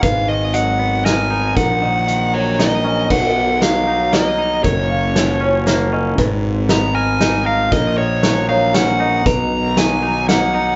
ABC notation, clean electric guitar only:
X:1
M:3/4
L:1/8
Q:1/4=117
K:Blyd
V:1 name="Clean electric guitar"
G,, D, F, B, A D | A,, D, D, F, D C | B,,2 F, D A, D | F,,2 E, C A, C |
G,,2 B, A D A | A,,2 F, D C D | B,,2 F, D A, D |]